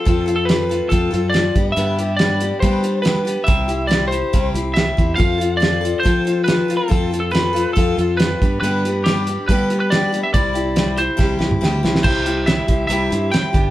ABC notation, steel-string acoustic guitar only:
X:1
M:4/4
L:1/8
Q:1/4=140
K:C
V:1 name="Steel-string acoustic guitar"
[F,CFA] [CFA] [F,CFA] [CFA] [F,CFA] [CFA] [F,CFA] [G,B,DG] | [G,,D,G,B,DG] [G,B,DG] [G,B,DG] [G,B,DG] [G,,D,G,B,DG] [G,B,DG] [G,B,DG] [G,B,DG] | [C,G,CEG] [CEG] [G,CEG] [CEG] [C,G,CEG] [CEG] [G,CEG] [CEG] | [F,CFA] [CFA] [F,CFA] [CFA] [F,CFA] [CFA] [F,CFA] [CFA] |
[F,CFA] [CFA] [F,CFA] [CFA] [F,CFA] [CFA] [F,CFA] [G,B,DG] | [G,,D,G,B,DG] [G,B,DG] [G,B,DG] [G,B,DG] [G,,D,G,B,DG] [G,B,DG] [G,B,DG] [G,B,DG] | [C,G,CEG] [CEG] [G,CEG] [CEG] [C,G,CEG] [CEG] [G,CEG] [CEG] | [C,G,CEG] [CEG] [G,CEG] [CEG] [C,G,CEG] [CEG] [G,CEG] [G,B,DG] |]